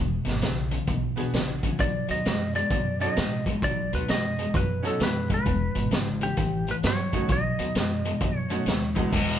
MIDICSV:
0, 0, Header, 1, 6, 480
1, 0, Start_track
1, 0, Tempo, 458015
1, 1880, Time_signature, 4, 2, 24, 8
1, 9845, End_track
2, 0, Start_track
2, 0, Title_t, "Electric slide guitar"
2, 0, Program_c, 0, 29
2, 1890, Note_on_c, 0, 74, 87
2, 2206, Note_off_c, 0, 74, 0
2, 2210, Note_on_c, 0, 75, 81
2, 2677, Note_off_c, 0, 75, 0
2, 2681, Note_on_c, 0, 74, 88
2, 3124, Note_off_c, 0, 74, 0
2, 3159, Note_on_c, 0, 75, 77
2, 3603, Note_off_c, 0, 75, 0
2, 3817, Note_on_c, 0, 74, 87
2, 4107, Note_off_c, 0, 74, 0
2, 4138, Note_on_c, 0, 71, 78
2, 4294, Note_off_c, 0, 71, 0
2, 4300, Note_on_c, 0, 75, 90
2, 4784, Note_on_c, 0, 71, 80
2, 4785, Note_off_c, 0, 75, 0
2, 5100, Note_off_c, 0, 71, 0
2, 5105, Note_on_c, 0, 69, 65
2, 5258, Note_off_c, 0, 69, 0
2, 5273, Note_on_c, 0, 71, 79
2, 5584, Note_off_c, 0, 71, 0
2, 5596, Note_on_c, 0, 71, 66
2, 6178, Note_off_c, 0, 71, 0
2, 6531, Note_on_c, 0, 67, 72
2, 7025, Note_off_c, 0, 67, 0
2, 7032, Note_on_c, 0, 71, 76
2, 7084, Note_off_c, 0, 71, 0
2, 7198, Note_on_c, 0, 73, 84
2, 7669, Note_off_c, 0, 73, 0
2, 7673, Note_on_c, 0, 75, 83
2, 8794, Note_off_c, 0, 75, 0
2, 8794, Note_on_c, 0, 73, 83
2, 9367, Note_off_c, 0, 73, 0
2, 9845, End_track
3, 0, Start_track
3, 0, Title_t, "Honky-tonk piano"
3, 0, Program_c, 1, 3
3, 1215, Note_on_c, 1, 59, 56
3, 1225, Note_on_c, 1, 62, 52
3, 1227, Note_on_c, 1, 66, 50
3, 1235, Note_on_c, 1, 68, 58
3, 1838, Note_off_c, 1, 59, 0
3, 1843, Note_off_c, 1, 62, 0
3, 1844, Note_off_c, 1, 66, 0
3, 1848, Note_off_c, 1, 68, 0
3, 3145, Note_on_c, 1, 61, 58
3, 3153, Note_on_c, 1, 63, 55
3, 3158, Note_on_c, 1, 66, 54
3, 3163, Note_on_c, 1, 69, 62
3, 3300, Note_off_c, 1, 61, 0
3, 3304, Note_off_c, 1, 63, 0
3, 3307, Note_off_c, 1, 66, 0
3, 3309, Note_off_c, 1, 69, 0
3, 5058, Note_on_c, 1, 61, 61
3, 5065, Note_on_c, 1, 63, 57
3, 5069, Note_on_c, 1, 66, 61
3, 5078, Note_on_c, 1, 69, 72
3, 5217, Note_off_c, 1, 61, 0
3, 5221, Note_off_c, 1, 63, 0
3, 5223, Note_off_c, 1, 66, 0
3, 5227, Note_off_c, 1, 69, 0
3, 7464, Note_on_c, 1, 57, 55
3, 7469, Note_on_c, 1, 61, 55
3, 7478, Note_on_c, 1, 63, 57
3, 7486, Note_on_c, 1, 66, 68
3, 7620, Note_off_c, 1, 57, 0
3, 7623, Note_off_c, 1, 61, 0
3, 7627, Note_off_c, 1, 63, 0
3, 7632, Note_off_c, 1, 66, 0
3, 8905, Note_on_c, 1, 57, 62
3, 8909, Note_on_c, 1, 61, 57
3, 8915, Note_on_c, 1, 63, 53
3, 8927, Note_on_c, 1, 66, 66
3, 9061, Note_off_c, 1, 57, 0
3, 9063, Note_off_c, 1, 61, 0
3, 9066, Note_off_c, 1, 63, 0
3, 9072, Note_off_c, 1, 66, 0
3, 9380, Note_on_c, 1, 40, 52
3, 9387, Note_on_c, 1, 56, 48
3, 9392, Note_on_c, 1, 59, 51
3, 9395, Note_on_c, 1, 62, 49
3, 9404, Note_on_c, 1, 66, 62
3, 9538, Note_off_c, 1, 40, 0
3, 9542, Note_off_c, 1, 56, 0
3, 9544, Note_off_c, 1, 59, 0
3, 9545, Note_off_c, 1, 62, 0
3, 9550, Note_off_c, 1, 66, 0
3, 9845, End_track
4, 0, Start_track
4, 0, Title_t, "Overdriven electric guitar"
4, 0, Program_c, 2, 29
4, 0, Note_on_c, 2, 40, 66
4, 0, Note_on_c, 2, 47, 67
4, 235, Note_off_c, 2, 40, 0
4, 238, Note_off_c, 2, 47, 0
4, 261, Note_on_c, 2, 40, 59
4, 266, Note_on_c, 2, 47, 75
4, 418, Note_off_c, 2, 40, 0
4, 420, Note_off_c, 2, 47, 0
4, 438, Note_on_c, 2, 40, 68
4, 444, Note_on_c, 2, 49, 82
4, 720, Note_off_c, 2, 40, 0
4, 723, Note_off_c, 2, 49, 0
4, 747, Note_on_c, 2, 40, 55
4, 751, Note_on_c, 2, 49, 75
4, 901, Note_off_c, 2, 40, 0
4, 903, Note_off_c, 2, 49, 0
4, 915, Note_on_c, 2, 40, 69
4, 921, Note_on_c, 2, 47, 78
4, 1199, Note_off_c, 2, 40, 0
4, 1201, Note_off_c, 2, 47, 0
4, 1231, Note_on_c, 2, 40, 52
4, 1233, Note_on_c, 2, 47, 60
4, 1383, Note_off_c, 2, 40, 0
4, 1384, Note_off_c, 2, 47, 0
4, 1401, Note_on_c, 2, 40, 62
4, 1408, Note_on_c, 2, 49, 78
4, 1682, Note_off_c, 2, 40, 0
4, 1685, Note_off_c, 2, 49, 0
4, 1713, Note_on_c, 2, 40, 62
4, 1720, Note_on_c, 2, 49, 71
4, 1864, Note_off_c, 2, 40, 0
4, 1867, Note_off_c, 2, 49, 0
4, 1875, Note_on_c, 2, 47, 57
4, 1881, Note_on_c, 2, 54, 68
4, 2159, Note_off_c, 2, 47, 0
4, 2162, Note_off_c, 2, 54, 0
4, 2187, Note_on_c, 2, 47, 60
4, 2193, Note_on_c, 2, 54, 70
4, 2341, Note_off_c, 2, 47, 0
4, 2344, Note_off_c, 2, 54, 0
4, 2370, Note_on_c, 2, 47, 68
4, 2377, Note_on_c, 2, 56, 81
4, 2646, Note_off_c, 2, 47, 0
4, 2650, Note_off_c, 2, 56, 0
4, 2674, Note_on_c, 2, 47, 60
4, 2683, Note_on_c, 2, 56, 67
4, 2824, Note_off_c, 2, 47, 0
4, 2829, Note_off_c, 2, 56, 0
4, 2845, Note_on_c, 2, 47, 72
4, 2854, Note_on_c, 2, 54, 84
4, 3124, Note_off_c, 2, 47, 0
4, 3128, Note_off_c, 2, 54, 0
4, 3159, Note_on_c, 2, 47, 64
4, 3163, Note_on_c, 2, 54, 59
4, 3307, Note_off_c, 2, 47, 0
4, 3309, Note_off_c, 2, 54, 0
4, 3319, Note_on_c, 2, 47, 72
4, 3328, Note_on_c, 2, 56, 70
4, 3601, Note_off_c, 2, 47, 0
4, 3605, Note_off_c, 2, 56, 0
4, 3635, Note_on_c, 2, 47, 62
4, 3641, Note_on_c, 2, 56, 68
4, 3785, Note_off_c, 2, 47, 0
4, 3789, Note_off_c, 2, 56, 0
4, 3807, Note_on_c, 2, 47, 62
4, 3810, Note_on_c, 2, 54, 66
4, 4085, Note_off_c, 2, 47, 0
4, 4086, Note_off_c, 2, 54, 0
4, 4120, Note_on_c, 2, 47, 68
4, 4123, Note_on_c, 2, 54, 80
4, 4268, Note_off_c, 2, 47, 0
4, 4269, Note_off_c, 2, 54, 0
4, 4281, Note_on_c, 2, 47, 73
4, 4286, Note_on_c, 2, 56, 79
4, 4562, Note_off_c, 2, 47, 0
4, 4565, Note_off_c, 2, 56, 0
4, 4601, Note_on_c, 2, 47, 61
4, 4608, Note_on_c, 2, 56, 69
4, 4749, Note_off_c, 2, 47, 0
4, 4752, Note_off_c, 2, 56, 0
4, 4769, Note_on_c, 2, 47, 68
4, 4774, Note_on_c, 2, 54, 84
4, 5046, Note_off_c, 2, 47, 0
4, 5049, Note_off_c, 2, 54, 0
4, 5084, Note_on_c, 2, 47, 59
4, 5088, Note_on_c, 2, 54, 70
4, 5230, Note_off_c, 2, 47, 0
4, 5232, Note_off_c, 2, 54, 0
4, 5241, Note_on_c, 2, 47, 72
4, 5251, Note_on_c, 2, 56, 71
4, 5523, Note_off_c, 2, 47, 0
4, 5527, Note_off_c, 2, 56, 0
4, 5555, Note_on_c, 2, 47, 68
4, 5561, Note_on_c, 2, 56, 64
4, 5706, Note_off_c, 2, 47, 0
4, 5709, Note_off_c, 2, 56, 0
4, 5723, Note_on_c, 2, 40, 71
4, 5730, Note_on_c, 2, 47, 70
4, 6003, Note_off_c, 2, 40, 0
4, 6007, Note_off_c, 2, 47, 0
4, 6028, Note_on_c, 2, 40, 64
4, 6034, Note_on_c, 2, 47, 68
4, 6182, Note_off_c, 2, 40, 0
4, 6185, Note_off_c, 2, 47, 0
4, 6197, Note_on_c, 2, 40, 72
4, 6199, Note_on_c, 2, 49, 78
4, 6480, Note_off_c, 2, 40, 0
4, 6482, Note_off_c, 2, 49, 0
4, 6510, Note_on_c, 2, 40, 68
4, 6517, Note_on_c, 2, 49, 72
4, 6664, Note_off_c, 2, 40, 0
4, 6667, Note_off_c, 2, 49, 0
4, 6675, Note_on_c, 2, 45, 68
4, 6680, Note_on_c, 2, 52, 76
4, 6960, Note_off_c, 2, 45, 0
4, 6962, Note_off_c, 2, 52, 0
4, 7004, Note_on_c, 2, 45, 58
4, 7009, Note_on_c, 2, 52, 64
4, 7151, Note_off_c, 2, 45, 0
4, 7153, Note_off_c, 2, 52, 0
4, 7171, Note_on_c, 2, 45, 68
4, 7179, Note_on_c, 2, 54, 77
4, 7447, Note_off_c, 2, 45, 0
4, 7451, Note_off_c, 2, 54, 0
4, 7477, Note_on_c, 2, 45, 64
4, 7483, Note_on_c, 2, 54, 73
4, 7627, Note_off_c, 2, 45, 0
4, 7630, Note_off_c, 2, 54, 0
4, 7638, Note_on_c, 2, 47, 62
4, 7644, Note_on_c, 2, 54, 67
4, 7921, Note_off_c, 2, 47, 0
4, 7924, Note_off_c, 2, 54, 0
4, 7954, Note_on_c, 2, 47, 66
4, 7962, Note_on_c, 2, 54, 73
4, 8106, Note_off_c, 2, 47, 0
4, 8110, Note_off_c, 2, 54, 0
4, 8126, Note_on_c, 2, 47, 71
4, 8127, Note_on_c, 2, 56, 83
4, 8405, Note_off_c, 2, 47, 0
4, 8406, Note_off_c, 2, 56, 0
4, 8442, Note_on_c, 2, 47, 61
4, 8448, Note_on_c, 2, 56, 77
4, 8590, Note_off_c, 2, 47, 0
4, 8592, Note_off_c, 2, 56, 0
4, 8602, Note_on_c, 2, 47, 67
4, 8609, Note_on_c, 2, 54, 79
4, 8883, Note_off_c, 2, 47, 0
4, 8886, Note_off_c, 2, 54, 0
4, 8912, Note_on_c, 2, 47, 58
4, 8919, Note_on_c, 2, 54, 63
4, 9064, Note_off_c, 2, 47, 0
4, 9068, Note_off_c, 2, 54, 0
4, 9079, Note_on_c, 2, 47, 72
4, 9082, Note_on_c, 2, 56, 78
4, 9361, Note_off_c, 2, 47, 0
4, 9362, Note_off_c, 2, 56, 0
4, 9390, Note_on_c, 2, 47, 66
4, 9392, Note_on_c, 2, 56, 65
4, 9543, Note_off_c, 2, 47, 0
4, 9544, Note_off_c, 2, 56, 0
4, 9566, Note_on_c, 2, 40, 69
4, 9569, Note_on_c, 2, 47, 80
4, 9844, Note_off_c, 2, 40, 0
4, 9845, Note_off_c, 2, 47, 0
4, 9845, End_track
5, 0, Start_track
5, 0, Title_t, "Upright bass"
5, 0, Program_c, 3, 32
5, 0, Note_on_c, 3, 28, 78
5, 197, Note_off_c, 3, 28, 0
5, 274, Note_on_c, 3, 32, 70
5, 400, Note_off_c, 3, 32, 0
5, 439, Note_on_c, 3, 35, 74
5, 801, Note_off_c, 3, 35, 0
5, 920, Note_on_c, 3, 35, 83
5, 1282, Note_off_c, 3, 35, 0
5, 1400, Note_on_c, 3, 34, 75
5, 1762, Note_off_c, 3, 34, 0
5, 1883, Note_on_c, 3, 35, 81
5, 2117, Note_off_c, 3, 35, 0
5, 2195, Note_on_c, 3, 39, 74
5, 2321, Note_off_c, 3, 39, 0
5, 2368, Note_on_c, 3, 42, 76
5, 2727, Note_off_c, 3, 42, 0
5, 2835, Note_on_c, 3, 42, 80
5, 3199, Note_off_c, 3, 42, 0
5, 3328, Note_on_c, 3, 45, 75
5, 3687, Note_off_c, 3, 45, 0
5, 3800, Note_on_c, 3, 35, 86
5, 4036, Note_off_c, 3, 35, 0
5, 4123, Note_on_c, 3, 39, 83
5, 4246, Note_off_c, 3, 39, 0
5, 4292, Note_on_c, 3, 42, 73
5, 4650, Note_off_c, 3, 42, 0
5, 4759, Note_on_c, 3, 42, 79
5, 5122, Note_off_c, 3, 42, 0
5, 5241, Note_on_c, 3, 42, 71
5, 5603, Note_off_c, 3, 42, 0
5, 5725, Note_on_c, 3, 28, 89
5, 5959, Note_off_c, 3, 28, 0
5, 6031, Note_on_c, 3, 32, 84
5, 6159, Note_off_c, 3, 32, 0
5, 6199, Note_on_c, 3, 32, 79
5, 6562, Note_off_c, 3, 32, 0
5, 6684, Note_on_c, 3, 33, 83
5, 7045, Note_off_c, 3, 33, 0
5, 7163, Note_on_c, 3, 43, 71
5, 7525, Note_off_c, 3, 43, 0
5, 7646, Note_on_c, 3, 35, 75
5, 7880, Note_off_c, 3, 35, 0
5, 7958, Note_on_c, 3, 39, 72
5, 8084, Note_off_c, 3, 39, 0
5, 8123, Note_on_c, 3, 42, 76
5, 8485, Note_off_c, 3, 42, 0
5, 8606, Note_on_c, 3, 42, 82
5, 8966, Note_off_c, 3, 42, 0
5, 9075, Note_on_c, 3, 39, 76
5, 9439, Note_off_c, 3, 39, 0
5, 9567, Note_on_c, 3, 28, 90
5, 9800, Note_off_c, 3, 28, 0
5, 9845, End_track
6, 0, Start_track
6, 0, Title_t, "Drums"
6, 272, Note_on_c, 9, 42, 58
6, 282, Note_on_c, 9, 38, 30
6, 377, Note_off_c, 9, 42, 0
6, 387, Note_off_c, 9, 38, 0
6, 439, Note_on_c, 9, 42, 70
6, 449, Note_on_c, 9, 38, 88
6, 544, Note_off_c, 9, 42, 0
6, 554, Note_off_c, 9, 38, 0
6, 752, Note_on_c, 9, 42, 58
6, 857, Note_off_c, 9, 42, 0
6, 915, Note_on_c, 9, 42, 69
6, 918, Note_on_c, 9, 36, 88
6, 1020, Note_off_c, 9, 42, 0
6, 1023, Note_off_c, 9, 36, 0
6, 1231, Note_on_c, 9, 42, 52
6, 1336, Note_off_c, 9, 42, 0
6, 1398, Note_on_c, 9, 42, 78
6, 1408, Note_on_c, 9, 38, 94
6, 1503, Note_off_c, 9, 42, 0
6, 1513, Note_off_c, 9, 38, 0
6, 1709, Note_on_c, 9, 42, 54
6, 1710, Note_on_c, 9, 36, 66
6, 1814, Note_off_c, 9, 36, 0
6, 1814, Note_off_c, 9, 42, 0
6, 1878, Note_on_c, 9, 36, 93
6, 1882, Note_on_c, 9, 42, 68
6, 1983, Note_off_c, 9, 36, 0
6, 1986, Note_off_c, 9, 42, 0
6, 2194, Note_on_c, 9, 42, 59
6, 2299, Note_off_c, 9, 42, 0
6, 2359, Note_on_c, 9, 42, 64
6, 2370, Note_on_c, 9, 38, 90
6, 2464, Note_off_c, 9, 42, 0
6, 2475, Note_off_c, 9, 38, 0
6, 2671, Note_on_c, 9, 42, 51
6, 2776, Note_off_c, 9, 42, 0
6, 2832, Note_on_c, 9, 42, 62
6, 2836, Note_on_c, 9, 36, 93
6, 2937, Note_off_c, 9, 42, 0
6, 2940, Note_off_c, 9, 36, 0
6, 3147, Note_on_c, 9, 42, 45
6, 3252, Note_off_c, 9, 42, 0
6, 3314, Note_on_c, 9, 42, 71
6, 3324, Note_on_c, 9, 38, 98
6, 3419, Note_off_c, 9, 42, 0
6, 3429, Note_off_c, 9, 38, 0
6, 3623, Note_on_c, 9, 42, 54
6, 3628, Note_on_c, 9, 36, 69
6, 3728, Note_off_c, 9, 42, 0
6, 3732, Note_off_c, 9, 36, 0
6, 3792, Note_on_c, 9, 42, 76
6, 3797, Note_on_c, 9, 36, 91
6, 3897, Note_off_c, 9, 42, 0
6, 3902, Note_off_c, 9, 36, 0
6, 4114, Note_on_c, 9, 42, 53
6, 4219, Note_off_c, 9, 42, 0
6, 4280, Note_on_c, 9, 42, 74
6, 4290, Note_on_c, 9, 38, 94
6, 4384, Note_off_c, 9, 42, 0
6, 4395, Note_off_c, 9, 38, 0
6, 4595, Note_on_c, 9, 42, 52
6, 4700, Note_off_c, 9, 42, 0
6, 4759, Note_on_c, 9, 36, 95
6, 4760, Note_on_c, 9, 42, 67
6, 4864, Note_off_c, 9, 36, 0
6, 4865, Note_off_c, 9, 42, 0
6, 5075, Note_on_c, 9, 42, 57
6, 5180, Note_off_c, 9, 42, 0
6, 5242, Note_on_c, 9, 42, 77
6, 5252, Note_on_c, 9, 38, 97
6, 5347, Note_off_c, 9, 42, 0
6, 5357, Note_off_c, 9, 38, 0
6, 5552, Note_on_c, 9, 36, 72
6, 5555, Note_on_c, 9, 42, 54
6, 5657, Note_off_c, 9, 36, 0
6, 5660, Note_off_c, 9, 42, 0
6, 5719, Note_on_c, 9, 42, 63
6, 5721, Note_on_c, 9, 36, 92
6, 5824, Note_off_c, 9, 42, 0
6, 5826, Note_off_c, 9, 36, 0
6, 6031, Note_on_c, 9, 42, 59
6, 6136, Note_off_c, 9, 42, 0
6, 6200, Note_on_c, 9, 42, 68
6, 6211, Note_on_c, 9, 38, 97
6, 6305, Note_off_c, 9, 42, 0
6, 6315, Note_off_c, 9, 38, 0
6, 6513, Note_on_c, 9, 42, 54
6, 6617, Note_off_c, 9, 42, 0
6, 6680, Note_on_c, 9, 42, 69
6, 6681, Note_on_c, 9, 36, 97
6, 6785, Note_off_c, 9, 42, 0
6, 6786, Note_off_c, 9, 36, 0
6, 6988, Note_on_c, 9, 42, 48
6, 7093, Note_off_c, 9, 42, 0
6, 7158, Note_on_c, 9, 42, 71
6, 7168, Note_on_c, 9, 38, 100
6, 7262, Note_off_c, 9, 42, 0
6, 7273, Note_off_c, 9, 38, 0
6, 7473, Note_on_c, 9, 36, 70
6, 7473, Note_on_c, 9, 42, 47
6, 7578, Note_off_c, 9, 36, 0
6, 7578, Note_off_c, 9, 42, 0
6, 7637, Note_on_c, 9, 42, 69
6, 7641, Note_on_c, 9, 36, 93
6, 7742, Note_off_c, 9, 42, 0
6, 7746, Note_off_c, 9, 36, 0
6, 7952, Note_on_c, 9, 42, 57
6, 8057, Note_off_c, 9, 42, 0
6, 8123, Note_on_c, 9, 42, 64
6, 8134, Note_on_c, 9, 38, 89
6, 8228, Note_off_c, 9, 42, 0
6, 8238, Note_off_c, 9, 38, 0
6, 8434, Note_on_c, 9, 42, 57
6, 8539, Note_off_c, 9, 42, 0
6, 8603, Note_on_c, 9, 36, 91
6, 8603, Note_on_c, 9, 42, 75
6, 8708, Note_off_c, 9, 36, 0
6, 8708, Note_off_c, 9, 42, 0
6, 8915, Note_on_c, 9, 42, 50
6, 9019, Note_off_c, 9, 42, 0
6, 9087, Note_on_c, 9, 42, 74
6, 9098, Note_on_c, 9, 38, 89
6, 9192, Note_off_c, 9, 42, 0
6, 9203, Note_off_c, 9, 38, 0
6, 9395, Note_on_c, 9, 36, 70
6, 9400, Note_on_c, 9, 42, 55
6, 9500, Note_off_c, 9, 36, 0
6, 9505, Note_off_c, 9, 42, 0
6, 9564, Note_on_c, 9, 36, 98
6, 9567, Note_on_c, 9, 49, 88
6, 9669, Note_off_c, 9, 36, 0
6, 9672, Note_off_c, 9, 49, 0
6, 9845, End_track
0, 0, End_of_file